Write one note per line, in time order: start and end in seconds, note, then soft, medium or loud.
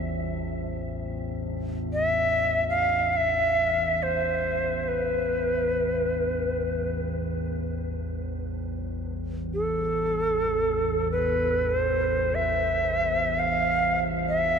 0.00 4.93 A1 medium
0.00 4.94 E2 medium
1.93 2.64 E5 medium
2.70 3.18 F5 medium
3.16 4.04 E5 medium
4.03 4.83 C5 medium
4.83 4.89 C5 medium
4.88 6.98 B4 medium
4.95 14.59 A1 medium
4.95 14.59 E2 medium
9.54 11.08 A4 medium
11.12 11.72 B4 medium
11.71 12.36 C5 medium
12.35 13.41 E5 medium
13.39 14.01 F5 medium
14.29 14.59 E5 medium